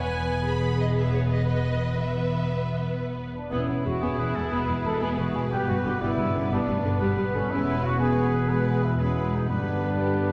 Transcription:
Already playing: E1 E2 B4
0.00 B3 B4 G#5
0.47 B3 G#4 B4 B5
0.80 D#5
0.98 B3 B4 E5
1.14 C#5
1.32 D#5
1.47 B4 D#5
1.99 B3 B4 E5
3.35 D4
3.51 E1 E2 B2 B3 C#4 E4 G#4 B4
3.68 E1 E2 B3
3.84 E1 E2 G#3 F#4
4.01 E1 E2 B3 G#4 C#5
4.18 E1 E2 B3 B4
4.35 E1 E2 G#3 A4
4.51 E1 E2 G#3 B3 G#4 B4
4.68 E1 E2 B3
4.84 E1 E2 G#3 A4
5.00 E1 E2 G#3 B3 G#4
5.17 E1 E2 B3 F#4
5.34 E1 E2 G#3 G#4
5.51 G1 G2 G3 B3 G4 B4
5.68 G1 G2 G3 F#4
5.84 G1 G2 D3 G4
5.99 G1 G2 C#3 G3 B3 E4 D5
6.18 G1 G2 G3 D4
6.35 G1 G2 D3 C#4
6.50 G1 G2 G3 B3 D4 D5
6.67 G1 G2 G3 A3
6.84 G1 G2 D3 B3
7.00 G1 G2 G3 B3 B4
7.17 G1 G2 G3
7.34 G1 G2 D3 C#4
7.48 E1 E2 B2 G#3 B3 C#4 E4 B4
7.83 F#4
7.99 G#3 B3 G#4 B4
8.16 C#5
8.34 B4
8.48 G#3 B3 B4
8.67 G#4
8.84 E4
8.97 E1 E2 G#3 B3 C#4 E4 G#4 B4
9.34 D#4
9.49 G1 G2 D3 G3 B3 D4 B4
10.00 G4

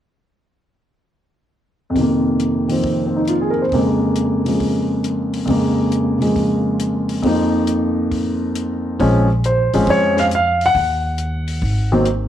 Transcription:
1.90 F2
1.94 C3 D#3, kick, open hi-hat
2.01 A#3
2.40 closed hi-hat
2.69 D#3 F3 C4, open hi-hat
2.84 kick, open hi-hat
3.06 C4
3.16 D#4
3.28 F4, closed hi-hat
3.41 G#4
3.50 A#4
3.62 C5
3.72 F2 C#3 G#3 A#3, kick, open hi-hat
4.16 closed hi-hat
4.45 C#3 F3 G#3, open hi-hat
4.60 kick, open hi-hat
5.04 closed hi-hat
5.34 open hi-hat
5.45 F2 C#3 G#3, kick, open hi-hat
5.50 A#3
5.92 closed hi-hat
6.19 C#3 F3 G#3, open hi-hat
6.36 kick, open hi-hat
6.80 closed hi-hat
7.09 open hi-hat
7.22 F2 F3 A#3, kick, open hi-hat
7.27 D#4
7.67 closed hi-hat
8.11 kick, open hi-hat
8.55 closed hi-hat
9.00 A#1 F3 G#3 C4 C#4, kick, open hi-hat
9.44 C5, closed hi-hat
9.74 A1 F3 G#3 C4 C#4, open hi-hat
9.87 F2 C#5, kick, open hi-hat
10.17 F5, snare
10.31 F5, closed hi-hat
10.61 open hi-hat
10.66 F#5
10.75 D#2, kick, open hi-hat
11.18 closed hi-hat
11.48 open hi-hat
11.62 G#1, kick, open hi-hat
11.92 D#3 F#3 A#3 C4
12.06 closed hi-hat

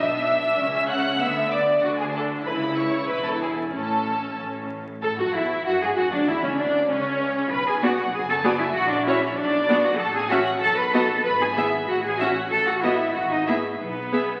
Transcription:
Already playing: B1 B2 D4 E5 E6
0.59 C#2 C#3 C#4
0.89 F#5 F#6
1.20 D2 D3 B3 E5 E6
1.51 D5 D6
1.81 D2 D3 D4 F#4 F#5
1.97 G#4 G#5
2.13 A4 A5
2.45 C#2 C#3 E4 B4 B5
2.77 C#5 C#6
3.09 E1 E2 B4 B5
3.25 A4 A5
3.41 G#4 G#5
3.74 A1 A2 C#4 A4 A5
4.38 A1 A2
5.02 A2 A4 A5
5.19 F#2 F#4 F#5
5.34 E2 E4 E5
5.66 F#2 F#4 F#5
5.81 G#2 G#4 G#5
5.97 F#2 F#4 F#5
6.11 D2 D4 D5
6.27 E2 E4 E5
6.43 C#2 C#4 C#5
6.57 D2 D4 D5
6.89 C#2 C#4 C#5
7.51 B1 B4 B5
7.67 G#4 G#5
7.83 B3 F#4 D5 F#5
8.13 F#1 G#4 G#5
8.30 A4 A5
8.44 B3 F#4 G#4 D5 G#5
8.59 E4 E5
8.73 A#1 F#4 F#5
8.89 D4 D5
9.06 C#4 E4 F#4 C#5 E5
9.22 C#4 C#5
9.37 B1 D4 D5
9.69 B3 F#4 D5
9.84 F#4 F#5
9.99 A1 A4 A5
10.15 G#4 G#5
10.29 C#4 F#4 E5 F#5
10.59 B1 A4 A5
10.78 B4 B5
10.94 B3 F#4 A4 D#5 A5
11.24 G#1 B4 B5
11.40 G#4 G#5
11.57 B3 E4 G#4 E5
11.88 A1 F#4 F#5
12.04 G#4 G#5
12.19 C#4 F#4 E5 F#5
12.52 A1 A4 A5
12.66 F#4 F#5
12.82 B3 E4 F#4 D#5 E5
13.15 G#1 F#4 F#5
13.31 D#4 D#5
13.46 B3 E4 G#4 E5
13.79 B1 B3 B4
14.12 B3 G#4 E5

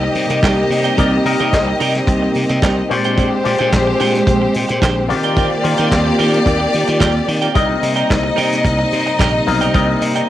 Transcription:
Already playing: C3 G3 A#3 C4 D#4 G4 D#5
0.03 muted clean electric guitar stroke
0.15 C3, open hi-hat
0.29 C3, muted clean electric guitar stroke, closed hi-hat
0.42 C2 D#4 A#4 D5 G5, kick, snare, clap, closed hi-hat
0.58 muted clean electric guitar stroke
0.70 C3, muted clean electric guitar stroke, open hi-hat
0.84 D#4 A#4 D5 G5, closed hi-hat
0.97 C2 C3 G3 D#4 A#4 D5 G5, kick, closed hi-hat
1.12 muted clean electric guitar stroke
1.25 C3 G3 D#4 A#4 D#5, muted clean electric guitar stroke, open hi-hat
1.39 C3 D#4 A#4 D5 G5, closed hi-hat
1.53 C2, kick, snare, clap, closed hi-hat
1.68 muted clean electric guitar stroke
1.80 C3 D#4 A#4 D5 G5, open hi-hat
1.95 muted clean electric guitar stroke, snare, closed hi-hat
2.07 C2, muted clean electric guitar stroke, kick, closed hi-hat
2.22 muted clean electric guitar stroke
2.35 C3, open hi-hat
2.49 C3, muted clean electric guitar stroke, closed hi-hat
2.62 C2 D#4 A#4 D5 G5, kick, snare, clap, closed hi-hat
2.78 muted clean electric guitar stroke
2.89 A#2 F3 G#3 G4 C5 C#5, muted clean electric guitar stroke, open hi-hat
2.97 D5
3.04 D4 G#4 C5 G5, closed hi-hat
3.17 D4 G#4 C5 G5, kick, closed hi-hat
3.33 muted clean electric guitar stroke
3.44 A#2 F3 G#3 G4 C5 D5, muted clean electric guitar stroke, open hi-hat
3.58 A#2 D4 G#4 C5 G5, closed hi-hat
3.72 A#1, kick, snare, clap, closed hi-hat
3.87 muted clean electric guitar stroke
4.00 A#2 D4 G#4 C5 G5, open hi-hat
4.14 muted clean electric guitar stroke, snare, closed hi-hat
4.27 A#1, muted clean electric guitar stroke, kick, closed hi-hat
4.42 muted clean electric guitar stroke
4.54 A#2, open hi-hat
4.69 A#2, muted clean electric guitar stroke, closed hi-hat
4.81 A#1 D4 G#4 C5 G5, kick, snare, clap, closed hi-hat
4.97 muted clean electric guitar stroke
5.08 D#3 A#3 F4 F#4 G4 D5, muted clean electric guitar stroke, open hi-hat
5.16 G4
5.23 F4 A#4 D5 G5, closed hi-hat
5.36 F4 A#4 D5 G5, kick, closed hi-hat
5.52 muted clean electric guitar stroke
5.63 D#3 A#3 F4 G4 C5, muted clean electric guitar stroke, open hi-hat
5.77 D#3 F4 A#4 D5 G5, closed hi-hat
5.91 D#2, kick, snare, clap, closed hi-hat
6.06 muted clean electric guitar stroke
6.19 D#3 F4 A#4 D5 G5, open hi-hat
6.34 muted clean electric guitar stroke, snare, closed hi-hat
6.46 D#2, muted clean electric guitar stroke, kick, closed hi-hat
6.60 muted clean electric guitar stroke
6.73 D#3, open hi-hat
6.88 D#3, muted clean electric guitar stroke, closed hi-hat
7.00 D#2 F4 A#4 D5 G5, kick, snare, clap, closed hi-hat
7.14 muted clean electric guitar stroke
7.28 D#3, muted clean electric guitar stroke, open hi-hat
7.42 F4 A#4 D5 G5, closed hi-hat
7.54 C2 C3 G3 A#3 C4 D#4 A#4 D5 D#5 G5, kick, closed hi-hat
7.69 muted clean electric guitar stroke
7.82 C3, muted clean electric guitar stroke, open hi-hat
7.96 D#4 A#4 D5 G5, closed hi-hat
8.10 C2, kick, snare, clap, closed hi-hat
8.23 muted clean electric guitar stroke
8.36 C3 D#4 A#4 D5 G5, open hi-hat
8.51 muted clean electric guitar stroke, snare, closed hi-hat
8.64 C2, muted clean electric guitar stroke, kick, closed hi-hat
8.79 muted clean electric guitar stroke
8.92 C3, open hi-hat
9.06 muted clean electric guitar stroke, closed hi-hat
9.19 A#1 D#4 A#4 D5 G5, kick, snare, clap, closed hi-hat
9.34 muted clean electric guitar stroke
9.46 B1 C3 C4 D#4 A#4 F5, muted clean electric guitar stroke, open hi-hat
9.61 D#4 A#4 D5 G5, closed hi-hat
9.73 C2 C3 C4 D#4 A#4 D5 D#5 G5, kick, closed hi-hat
9.88 muted clean electric guitar stroke
10.01 C3, muted clean electric guitar stroke, open hi-hat
10.15 D#4 A#4 D5 G5, closed hi-hat

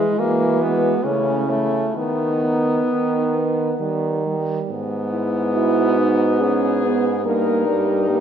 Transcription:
Already playing: G#3 E4
0.18 E3 A#3 F#4
0.60 G#3 B3
1.05 C#3 A3 C#4 E4
1.49 A3
1.95 D#3 B3 D#4
2.41 B3
2.91 D#3
3.35 B3
3.80 D#3 G3
4.26 G3
4.70 G#2 B3
5.11 E4
5.54 E4 F#4
5.99 D#4
6.40 C#4 G#4
6.84 B3
7.25 G2 A#3 D#4 A#4
7.66 G3
8.09 A#3 G4

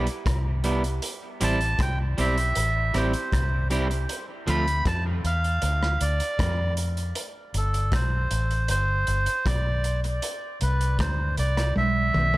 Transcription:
0.07 closed hi-hat
0.26 C2, kick, cross-stick, closed hi-hat
0.64 G3 B3 E4 G4, closed hi-hat
0.84 closed hi-hat
1.02 closed hi-hat
1.41 A1 G3 C4 E4 G4 A5, closed hi-hat
1.61 closed hi-hat
1.79 C2 G5, kick, cross-stick, closed hi-hat
2.18 B1 G3 C4 E4 G4 E5, closed hi-hat
2.38 closed hi-hat
2.55 A1, closed hi-hat
2.94 A1 G3 C4 E4 G4 C5, cross-stick, closed hi-hat
3.13 closed hi-hat
3.33 C2, kick, cross-stick, closed hi-hat
3.70 G3 C4 E4 G4, closed hi-hat
3.90 muted clean electric guitar stroke, closed hi-hat
4.09 closed hi-hat
4.47 D2 F3 A3 C4 F4 B5, closed hi-hat
4.68 closed hi-hat
4.86 F2 A5, kick, cross-stick, closed hi-hat
5.24 E2 F5, closed hi-hat
5.44 closed hi-hat
5.62 D2, closed hi-hat
5.83 cross-stick
6.01 D2 D5, closed hi-hat
6.20 closed hi-hat
6.39 F2, kick, cross-stick, closed hi-hat
6.77 closed hi-hat
6.97 closed hi-hat
7.15 closed hi-hat
7.54 G1 A4, closed hi-hat
7.74 closed hi-hat
7.92 B1 C5, kick, cross-stick, closed hi-hat
8.31 A1, closed hi-hat
8.51 closed hi-hat
8.68 G1 C5, closed hi-hat
9.07 G1, closed hi-hat
9.26 closed hi-hat
9.46 B1 D5, kick, cross-stick, closed hi-hat
9.84 closed hi-hat
10.04 closed hi-hat
10.22 closed hi-hat
10.61 C2 B4, closed hi-hat
10.81 closed hi-hat
10.99 D2 C5, kick, cross-stick, closed hi-hat
11.37 C2 D5, closed hi-hat
11.57 cross-stick, closed hi-hat
11.76 B1 E5, high tom
12.14 B1, mid tom
12.34 mid tom

